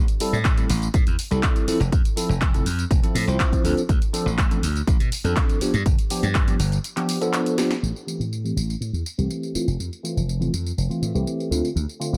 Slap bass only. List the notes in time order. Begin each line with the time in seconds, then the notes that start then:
0.33 A2
0.70 A1
0.94 A2
1.07 E2
1.31 C2
1.68 muted slap bass stroke
1.80 F1
2.29 F1
2.66 F2
2.91 F1
3.15 A2
3.27 C2
3.64 D2
3.89 D2
4.26 A1
4.62 D2
4.88 A1
5.00 B2
5.24 F2
5.61 muted slap bass stroke
5.74 G2
5.86 G1
6.23 G2
6.59 G1
7.83 A1
8.20 A2
8.56 A1
8.81 A2
8.93 E2
9.18 C2
9.55 muted slap bass stroke
9.67 F1
9.79 F2
10.16 F1
10.53 F2
10.78 F1
11.02 A2
11.14 C2
11.51 D2
11.76 D2
12.13 A1